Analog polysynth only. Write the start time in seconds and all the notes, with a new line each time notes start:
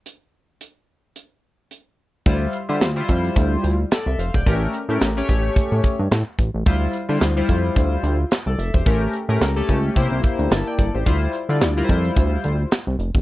2.26 G3 E4 F4 C5
2.69 G3 E4 F4 C5
2.96 G3 E4 F4 C5
3.92 A4 D5
4.07 A4 E5
4.19 C5 F5
4.35 D5 G5
4.46 A3 C#4 G4 A#4
4.89 A3 C#4 G4 A#4
5.17 A3 C#4 G4 C#5
6.66 G3 E4 F4 C5
7.09 G3 E4 F4 C5
7.36 G3 E4 F4 C5
8.47 A4 D5
8.59 A4 E5
8.74 G4 C5
8.86 A3 C#4 G4 A#4
9.29 A3 C#4 G4 A#4
9.56 A3 C#4 G4 A4
9.96 A#3 E4 G4 C5
10.52 E5 A5
10.67 D5 G5
10.79 A4 D5
10.95 G4 C5
11.06 G3 E4 F4 C5
11.49 G3 E4 F4 D5
11.77 G3 E4 F4 A#4
11.84 C5